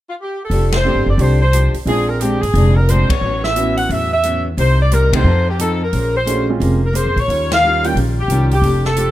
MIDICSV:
0, 0, Header, 1, 7, 480
1, 0, Start_track
1, 0, Tempo, 338409
1, 729, Time_signature, 4, 2, 24, 8
1, 12922, End_track
2, 0, Start_track
2, 0, Title_t, "Saxophone section"
2, 0, Program_c, 0, 65
2, 138, Note_on_c, 0, 65, 57
2, 202, Note_off_c, 0, 65, 0
2, 304, Note_on_c, 0, 67, 68
2, 565, Note_off_c, 0, 67, 0
2, 641, Note_on_c, 0, 69, 76
2, 1079, Note_off_c, 0, 69, 0
2, 1081, Note_on_c, 0, 72, 80
2, 1507, Note_off_c, 0, 72, 0
2, 1567, Note_on_c, 0, 74, 72
2, 1714, Note_off_c, 0, 74, 0
2, 1731, Note_on_c, 0, 72, 73
2, 2001, Note_off_c, 0, 72, 0
2, 2018, Note_on_c, 0, 72, 78
2, 2454, Note_off_c, 0, 72, 0
2, 2672, Note_on_c, 0, 68, 90
2, 2947, Note_off_c, 0, 68, 0
2, 2965, Note_on_c, 0, 70, 76
2, 3131, Note_on_c, 0, 67, 75
2, 3133, Note_off_c, 0, 70, 0
2, 3426, Note_on_c, 0, 68, 80
2, 3437, Note_off_c, 0, 67, 0
2, 3911, Note_off_c, 0, 68, 0
2, 3923, Note_on_c, 0, 70, 76
2, 4092, Note_off_c, 0, 70, 0
2, 4113, Note_on_c, 0, 72, 83
2, 4398, Note_on_c, 0, 73, 92
2, 4409, Note_off_c, 0, 72, 0
2, 4877, Note_off_c, 0, 73, 0
2, 4888, Note_on_c, 0, 76, 100
2, 5330, Note_off_c, 0, 76, 0
2, 5356, Note_on_c, 0, 78, 76
2, 5517, Note_off_c, 0, 78, 0
2, 5558, Note_on_c, 0, 76, 86
2, 5840, Note_off_c, 0, 76, 0
2, 5857, Note_on_c, 0, 76, 87
2, 6295, Note_off_c, 0, 76, 0
2, 6511, Note_on_c, 0, 72, 92
2, 6787, Note_off_c, 0, 72, 0
2, 6842, Note_on_c, 0, 74, 90
2, 6992, Note_off_c, 0, 74, 0
2, 7008, Note_on_c, 0, 70, 83
2, 7297, Note_off_c, 0, 70, 0
2, 7306, Note_on_c, 0, 72, 78
2, 7739, Note_off_c, 0, 72, 0
2, 7803, Note_on_c, 0, 67, 64
2, 7942, Note_off_c, 0, 67, 0
2, 7961, Note_on_c, 0, 69, 77
2, 8233, Note_off_c, 0, 69, 0
2, 8283, Note_on_c, 0, 70, 76
2, 8709, Note_off_c, 0, 70, 0
2, 8747, Note_on_c, 0, 72, 75
2, 9180, Note_off_c, 0, 72, 0
2, 9726, Note_on_c, 0, 70, 65
2, 9864, Note_off_c, 0, 70, 0
2, 9870, Note_on_c, 0, 72, 81
2, 10167, Note_off_c, 0, 72, 0
2, 10210, Note_on_c, 0, 73, 86
2, 10664, Note_off_c, 0, 73, 0
2, 10687, Note_on_c, 0, 77, 101
2, 11110, Note_off_c, 0, 77, 0
2, 11144, Note_on_c, 0, 79, 88
2, 11303, Note_off_c, 0, 79, 0
2, 11634, Note_on_c, 0, 67, 75
2, 12063, Note_off_c, 0, 67, 0
2, 12101, Note_on_c, 0, 67, 81
2, 12535, Note_off_c, 0, 67, 0
2, 12575, Note_on_c, 0, 69, 88
2, 12922, Note_off_c, 0, 69, 0
2, 12922, End_track
3, 0, Start_track
3, 0, Title_t, "Grand piano"
3, 0, Program_c, 1, 0
3, 1200, Note_on_c, 1, 60, 46
3, 1209, Note_on_c, 1, 62, 42
3, 1215, Note_on_c, 1, 67, 40
3, 1221, Note_on_c, 1, 69, 47
3, 1930, Note_off_c, 1, 60, 0
3, 1935, Note_off_c, 1, 62, 0
3, 1938, Note_off_c, 1, 67, 0
3, 1941, Note_off_c, 1, 69, 0
3, 2648, Note_on_c, 1, 60, 51
3, 2653, Note_on_c, 1, 62, 49
3, 2665, Note_on_c, 1, 65, 44
3, 2669, Note_on_c, 1, 68, 54
3, 3375, Note_off_c, 1, 60, 0
3, 3377, Note_off_c, 1, 62, 0
3, 3383, Note_off_c, 1, 65, 0
3, 3385, Note_off_c, 1, 68, 0
3, 5043, Note_on_c, 1, 61, 48
3, 5044, Note_on_c, 1, 59, 49
3, 5055, Note_on_c, 1, 64, 45
3, 5062, Note_on_c, 1, 66, 58
3, 5773, Note_off_c, 1, 59, 0
3, 5773, Note_off_c, 1, 61, 0
3, 5779, Note_off_c, 1, 64, 0
3, 5782, Note_off_c, 1, 66, 0
3, 7285, Note_on_c, 1, 57, 53
3, 7289, Note_on_c, 1, 60, 48
3, 7301, Note_on_c, 1, 63, 45
3, 7311, Note_on_c, 1, 67, 59
3, 7437, Note_off_c, 1, 57, 0
3, 7439, Note_off_c, 1, 60, 0
3, 7444, Note_off_c, 1, 63, 0
3, 7449, Note_off_c, 1, 67, 0
3, 8890, Note_on_c, 1, 57, 48
3, 8907, Note_on_c, 1, 61, 44
3, 8910, Note_on_c, 1, 62, 43
3, 8921, Note_on_c, 1, 66, 51
3, 9167, Note_off_c, 1, 57, 0
3, 9175, Note_off_c, 1, 61, 0
3, 9177, Note_off_c, 1, 62, 0
3, 9182, Note_off_c, 1, 66, 0
3, 9209, Note_on_c, 1, 56, 47
3, 9213, Note_on_c, 1, 60, 43
3, 9223, Note_on_c, 1, 61, 44
3, 9227, Note_on_c, 1, 65, 49
3, 9621, Note_off_c, 1, 56, 0
3, 9624, Note_off_c, 1, 60, 0
3, 9629, Note_off_c, 1, 61, 0
3, 9631, Note_off_c, 1, 65, 0
3, 11107, Note_on_c, 1, 55, 54
3, 11116, Note_on_c, 1, 58, 51
3, 11126, Note_on_c, 1, 61, 49
3, 11129, Note_on_c, 1, 65, 54
3, 11267, Note_off_c, 1, 55, 0
3, 11271, Note_off_c, 1, 58, 0
3, 11276, Note_off_c, 1, 61, 0
3, 11278, Note_off_c, 1, 65, 0
3, 12922, End_track
4, 0, Start_track
4, 0, Title_t, "Steel-string acoustic guitar"
4, 0, Program_c, 2, 25
4, 717, Note_on_c, 2, 53, 46
4, 732, Note_on_c, 2, 57, 41
4, 741, Note_on_c, 2, 62, 45
4, 749, Note_on_c, 2, 67, 44
4, 1047, Note_off_c, 2, 53, 0
4, 1055, Note_off_c, 2, 57, 0
4, 1060, Note_off_c, 2, 62, 0
4, 1064, Note_off_c, 2, 67, 0
4, 1202, Note_on_c, 2, 53, 49
4, 1217, Note_on_c, 2, 57, 52
4, 1221, Note_on_c, 2, 62, 50
4, 1239, Note_on_c, 2, 67, 59
4, 1530, Note_off_c, 2, 53, 0
4, 1538, Note_off_c, 2, 57, 0
4, 1540, Note_off_c, 2, 62, 0
4, 1549, Note_off_c, 2, 67, 0
4, 1671, Note_on_c, 2, 53, 37
4, 1687, Note_on_c, 2, 57, 39
4, 1700, Note_on_c, 2, 62, 42
4, 1709, Note_on_c, 2, 67, 48
4, 2005, Note_off_c, 2, 53, 0
4, 2013, Note_off_c, 2, 57, 0
4, 2019, Note_off_c, 2, 62, 0
4, 2024, Note_off_c, 2, 67, 0
4, 2150, Note_on_c, 2, 53, 57
4, 2172, Note_on_c, 2, 57, 53
4, 2180, Note_on_c, 2, 62, 56
4, 2183, Note_on_c, 2, 67, 60
4, 2484, Note_off_c, 2, 53, 0
4, 2495, Note_off_c, 2, 57, 0
4, 2499, Note_off_c, 2, 62, 0
4, 2501, Note_off_c, 2, 67, 0
4, 2644, Note_on_c, 2, 46, 35
4, 2652, Note_on_c, 2, 56, 38
4, 2665, Note_on_c, 2, 60, 42
4, 2675, Note_on_c, 2, 62, 39
4, 2971, Note_off_c, 2, 46, 0
4, 2975, Note_off_c, 2, 56, 0
4, 2982, Note_off_c, 2, 60, 0
4, 2987, Note_off_c, 2, 62, 0
4, 3138, Note_on_c, 2, 46, 53
4, 3146, Note_on_c, 2, 56, 51
4, 3150, Note_on_c, 2, 60, 58
4, 3154, Note_on_c, 2, 62, 54
4, 3458, Note_off_c, 2, 46, 0
4, 3462, Note_off_c, 2, 56, 0
4, 3464, Note_off_c, 2, 60, 0
4, 3466, Note_off_c, 2, 62, 0
4, 3614, Note_on_c, 2, 46, 43
4, 3635, Note_on_c, 2, 56, 45
4, 3647, Note_on_c, 2, 60, 47
4, 3651, Note_on_c, 2, 62, 44
4, 3936, Note_off_c, 2, 46, 0
4, 3947, Note_off_c, 2, 56, 0
4, 3953, Note_off_c, 2, 60, 0
4, 3955, Note_off_c, 2, 62, 0
4, 4098, Note_on_c, 2, 46, 55
4, 4112, Note_on_c, 2, 56, 61
4, 4122, Note_on_c, 2, 60, 58
4, 4126, Note_on_c, 2, 62, 62
4, 4418, Note_off_c, 2, 46, 0
4, 4425, Note_off_c, 2, 56, 0
4, 4431, Note_off_c, 2, 60, 0
4, 4432, Note_off_c, 2, 62, 0
4, 4582, Note_on_c, 2, 45, 36
4, 4601, Note_on_c, 2, 54, 40
4, 4609, Note_on_c, 2, 59, 37
4, 4628, Note_on_c, 2, 61, 48
4, 4901, Note_off_c, 2, 45, 0
4, 4910, Note_off_c, 2, 54, 0
4, 4914, Note_off_c, 2, 59, 0
4, 4923, Note_off_c, 2, 61, 0
4, 5060, Note_on_c, 2, 45, 51
4, 5065, Note_on_c, 2, 54, 52
4, 5072, Note_on_c, 2, 59, 59
4, 5080, Note_on_c, 2, 61, 59
4, 5380, Note_off_c, 2, 45, 0
4, 5382, Note_off_c, 2, 54, 0
4, 5386, Note_off_c, 2, 59, 0
4, 5390, Note_off_c, 2, 61, 0
4, 5520, Note_on_c, 2, 45, 48
4, 5526, Note_on_c, 2, 54, 40
4, 5538, Note_on_c, 2, 59, 45
4, 5550, Note_on_c, 2, 61, 51
4, 5850, Note_off_c, 2, 45, 0
4, 5853, Note_off_c, 2, 54, 0
4, 5859, Note_off_c, 2, 59, 0
4, 5865, Note_off_c, 2, 61, 0
4, 6015, Note_on_c, 2, 45, 55
4, 6023, Note_on_c, 2, 59, 59
4, 6027, Note_on_c, 2, 54, 58
4, 6039, Note_on_c, 2, 61, 65
4, 6337, Note_off_c, 2, 45, 0
4, 6341, Note_off_c, 2, 59, 0
4, 6343, Note_off_c, 2, 54, 0
4, 6349, Note_off_c, 2, 61, 0
4, 6483, Note_on_c, 2, 48, 36
4, 6498, Note_on_c, 2, 55, 44
4, 6509, Note_on_c, 2, 58, 47
4, 6516, Note_on_c, 2, 63, 42
4, 6811, Note_off_c, 2, 48, 0
4, 6819, Note_off_c, 2, 55, 0
4, 6824, Note_off_c, 2, 58, 0
4, 6828, Note_off_c, 2, 63, 0
4, 6966, Note_on_c, 2, 48, 50
4, 6975, Note_on_c, 2, 55, 62
4, 6979, Note_on_c, 2, 58, 60
4, 6994, Note_on_c, 2, 63, 61
4, 7293, Note_off_c, 2, 48, 0
4, 7298, Note_off_c, 2, 55, 0
4, 7299, Note_off_c, 2, 58, 0
4, 7307, Note_off_c, 2, 63, 0
4, 7443, Note_on_c, 2, 53, 40
4, 7446, Note_on_c, 2, 60, 46
4, 7462, Note_on_c, 2, 63, 47
4, 7483, Note_on_c, 2, 69, 48
4, 7771, Note_off_c, 2, 53, 0
4, 7773, Note_off_c, 2, 60, 0
4, 7781, Note_off_c, 2, 63, 0
4, 7791, Note_off_c, 2, 69, 0
4, 7928, Note_on_c, 2, 53, 53
4, 7940, Note_on_c, 2, 60, 52
4, 7950, Note_on_c, 2, 69, 61
4, 7952, Note_on_c, 2, 63, 61
4, 8254, Note_off_c, 2, 53, 0
4, 8260, Note_off_c, 2, 60, 0
4, 8265, Note_off_c, 2, 69, 0
4, 8266, Note_off_c, 2, 63, 0
4, 8418, Note_on_c, 2, 58, 38
4, 8430, Note_on_c, 2, 61, 41
4, 8442, Note_on_c, 2, 72, 41
4, 8443, Note_on_c, 2, 68, 38
4, 8739, Note_off_c, 2, 58, 0
4, 8745, Note_off_c, 2, 61, 0
4, 8751, Note_off_c, 2, 68, 0
4, 8751, Note_off_c, 2, 72, 0
4, 8875, Note_on_c, 2, 58, 54
4, 8884, Note_on_c, 2, 61, 57
4, 8889, Note_on_c, 2, 68, 50
4, 8895, Note_on_c, 2, 72, 61
4, 9207, Note_off_c, 2, 58, 0
4, 9212, Note_off_c, 2, 61, 0
4, 9214, Note_off_c, 2, 68, 0
4, 9217, Note_off_c, 2, 72, 0
4, 9386, Note_on_c, 2, 58, 45
4, 9388, Note_on_c, 2, 61, 47
4, 9404, Note_on_c, 2, 68, 55
4, 9416, Note_on_c, 2, 72, 49
4, 9702, Note_off_c, 2, 58, 0
4, 9704, Note_off_c, 2, 61, 0
4, 9712, Note_off_c, 2, 68, 0
4, 9718, Note_off_c, 2, 72, 0
4, 9831, Note_on_c, 2, 58, 61
4, 9848, Note_on_c, 2, 61, 56
4, 9863, Note_on_c, 2, 68, 58
4, 9866, Note_on_c, 2, 72, 63
4, 10165, Note_off_c, 2, 58, 0
4, 10173, Note_off_c, 2, 61, 0
4, 10181, Note_off_c, 2, 68, 0
4, 10182, Note_off_c, 2, 72, 0
4, 10307, Note_on_c, 2, 51, 41
4, 10329, Note_on_c, 2, 55, 41
4, 10337, Note_on_c, 2, 61, 43
4, 10340, Note_on_c, 2, 65, 46
4, 10643, Note_off_c, 2, 51, 0
4, 10654, Note_off_c, 2, 55, 0
4, 10658, Note_off_c, 2, 61, 0
4, 10659, Note_off_c, 2, 65, 0
4, 10819, Note_on_c, 2, 51, 49
4, 10829, Note_on_c, 2, 55, 57
4, 10834, Note_on_c, 2, 61, 57
4, 10847, Note_on_c, 2, 65, 61
4, 11139, Note_off_c, 2, 51, 0
4, 11144, Note_off_c, 2, 55, 0
4, 11146, Note_off_c, 2, 61, 0
4, 11153, Note_off_c, 2, 65, 0
4, 11294, Note_on_c, 2, 51, 43
4, 11313, Note_on_c, 2, 55, 43
4, 11326, Note_on_c, 2, 61, 46
4, 11333, Note_on_c, 2, 65, 49
4, 11616, Note_off_c, 2, 51, 0
4, 11626, Note_off_c, 2, 55, 0
4, 11632, Note_off_c, 2, 61, 0
4, 11636, Note_off_c, 2, 65, 0
4, 11779, Note_on_c, 2, 51, 65
4, 11793, Note_on_c, 2, 55, 66
4, 11797, Note_on_c, 2, 65, 63
4, 11802, Note_on_c, 2, 61, 64
4, 12099, Note_off_c, 2, 51, 0
4, 12105, Note_off_c, 2, 55, 0
4, 12107, Note_off_c, 2, 65, 0
4, 12110, Note_off_c, 2, 61, 0
4, 12246, Note_on_c, 2, 53, 40
4, 12264, Note_on_c, 2, 57, 43
4, 12274, Note_on_c, 2, 62, 44
4, 12280, Note_on_c, 2, 67, 44
4, 12572, Note_off_c, 2, 53, 0
4, 12581, Note_off_c, 2, 57, 0
4, 12586, Note_off_c, 2, 62, 0
4, 12589, Note_off_c, 2, 67, 0
4, 12719, Note_on_c, 2, 53, 59
4, 12719, Note_on_c, 2, 57, 57
4, 12738, Note_on_c, 2, 62, 60
4, 12739, Note_on_c, 2, 67, 60
4, 12922, Note_off_c, 2, 53, 0
4, 12922, Note_off_c, 2, 57, 0
4, 12922, Note_off_c, 2, 62, 0
4, 12922, Note_off_c, 2, 67, 0
4, 12922, End_track
5, 0, Start_track
5, 0, Title_t, "Upright bass"
5, 0, Program_c, 3, 32
5, 707, Note_on_c, 3, 29, 65
5, 1312, Note_off_c, 3, 29, 0
5, 1346, Note_on_c, 3, 31, 54
5, 1499, Note_off_c, 3, 31, 0
5, 1508, Note_on_c, 3, 30, 65
5, 1662, Note_off_c, 3, 30, 0
5, 1670, Note_on_c, 3, 36, 82
5, 2411, Note_off_c, 3, 36, 0
5, 2632, Note_on_c, 3, 34, 63
5, 3372, Note_off_c, 3, 34, 0
5, 3430, Note_on_c, 3, 32, 58
5, 3589, Note_off_c, 3, 32, 0
5, 3598, Note_on_c, 3, 29, 82
5, 4336, Note_off_c, 3, 29, 0
5, 4556, Note_on_c, 3, 33, 64
5, 5475, Note_off_c, 3, 33, 0
5, 5521, Note_on_c, 3, 40, 73
5, 6437, Note_off_c, 3, 40, 0
5, 6489, Note_on_c, 3, 36, 73
5, 7402, Note_off_c, 3, 36, 0
5, 7432, Note_on_c, 3, 41, 80
5, 8353, Note_off_c, 3, 41, 0
5, 8409, Note_on_c, 3, 34, 69
5, 9321, Note_off_c, 3, 34, 0
5, 9364, Note_on_c, 3, 29, 77
5, 9962, Note_off_c, 3, 29, 0
5, 10007, Note_on_c, 3, 41, 52
5, 10147, Note_off_c, 3, 41, 0
5, 10155, Note_on_c, 3, 46, 60
5, 10311, Note_off_c, 3, 46, 0
5, 10324, Note_on_c, 3, 39, 67
5, 11238, Note_off_c, 3, 39, 0
5, 11279, Note_on_c, 3, 34, 73
5, 11730, Note_off_c, 3, 34, 0
5, 11746, Note_on_c, 3, 36, 69
5, 12202, Note_off_c, 3, 36, 0
5, 12221, Note_on_c, 3, 29, 72
5, 12922, Note_off_c, 3, 29, 0
5, 12922, End_track
6, 0, Start_track
6, 0, Title_t, "Muted upright bass strokes"
6, 2470, Note_on_c, 9, 29, 31
6, 2612, Note_off_c, 9, 29, 0
6, 12922, End_track
7, 0, Start_track
7, 0, Title_t, "Drums"
7, 724, Note_on_c, 9, 46, 38
7, 866, Note_off_c, 9, 46, 0
7, 1025, Note_on_c, 9, 38, 61
7, 1027, Note_on_c, 9, 51, 53
7, 1166, Note_off_c, 9, 38, 0
7, 1169, Note_off_c, 9, 51, 0
7, 1687, Note_on_c, 9, 46, 40
7, 1829, Note_off_c, 9, 46, 0
7, 2171, Note_on_c, 9, 42, 50
7, 2313, Note_off_c, 9, 42, 0
7, 2473, Note_on_c, 9, 46, 31
7, 2615, Note_off_c, 9, 46, 0
7, 2654, Note_on_c, 9, 46, 40
7, 2796, Note_off_c, 9, 46, 0
7, 3130, Note_on_c, 9, 42, 48
7, 3272, Note_off_c, 9, 42, 0
7, 3447, Note_on_c, 9, 46, 37
7, 3589, Note_off_c, 9, 46, 0
7, 3620, Note_on_c, 9, 46, 38
7, 3762, Note_off_c, 9, 46, 0
7, 4093, Note_on_c, 9, 42, 49
7, 4235, Note_off_c, 9, 42, 0
7, 4392, Note_on_c, 9, 36, 65
7, 4396, Note_on_c, 9, 51, 63
7, 4533, Note_off_c, 9, 36, 0
7, 4538, Note_off_c, 9, 51, 0
7, 4877, Note_on_c, 9, 38, 47
7, 5018, Note_off_c, 9, 38, 0
7, 5049, Note_on_c, 9, 42, 45
7, 5191, Note_off_c, 9, 42, 0
7, 5354, Note_on_c, 9, 46, 37
7, 5496, Note_off_c, 9, 46, 0
7, 5538, Note_on_c, 9, 46, 39
7, 5680, Note_off_c, 9, 46, 0
7, 6006, Note_on_c, 9, 42, 47
7, 6148, Note_off_c, 9, 42, 0
7, 6495, Note_on_c, 9, 46, 43
7, 6636, Note_off_c, 9, 46, 0
7, 6972, Note_on_c, 9, 42, 47
7, 7114, Note_off_c, 9, 42, 0
7, 7276, Note_on_c, 9, 36, 83
7, 7280, Note_on_c, 9, 51, 76
7, 7418, Note_off_c, 9, 36, 0
7, 7422, Note_off_c, 9, 51, 0
7, 7935, Note_on_c, 9, 42, 49
7, 8077, Note_off_c, 9, 42, 0
7, 8408, Note_on_c, 9, 46, 41
7, 8550, Note_off_c, 9, 46, 0
7, 8896, Note_on_c, 9, 42, 45
7, 9038, Note_off_c, 9, 42, 0
7, 9381, Note_on_c, 9, 46, 40
7, 9523, Note_off_c, 9, 46, 0
7, 9859, Note_on_c, 9, 42, 50
7, 10001, Note_off_c, 9, 42, 0
7, 10163, Note_on_c, 9, 36, 49
7, 10175, Note_on_c, 9, 46, 30
7, 10305, Note_off_c, 9, 36, 0
7, 10317, Note_off_c, 9, 46, 0
7, 10354, Note_on_c, 9, 46, 41
7, 10495, Note_off_c, 9, 46, 0
7, 10658, Note_on_c, 9, 38, 66
7, 10660, Note_on_c, 9, 51, 55
7, 10799, Note_off_c, 9, 38, 0
7, 10802, Note_off_c, 9, 51, 0
7, 11125, Note_on_c, 9, 46, 37
7, 11267, Note_off_c, 9, 46, 0
7, 11303, Note_on_c, 9, 46, 39
7, 11445, Note_off_c, 9, 46, 0
7, 11768, Note_on_c, 9, 42, 47
7, 11910, Note_off_c, 9, 42, 0
7, 12076, Note_on_c, 9, 46, 31
7, 12218, Note_off_c, 9, 46, 0
7, 12247, Note_on_c, 9, 46, 41
7, 12389, Note_off_c, 9, 46, 0
7, 12549, Note_on_c, 9, 38, 35
7, 12691, Note_off_c, 9, 38, 0
7, 12717, Note_on_c, 9, 42, 49
7, 12859, Note_off_c, 9, 42, 0
7, 12922, End_track
0, 0, End_of_file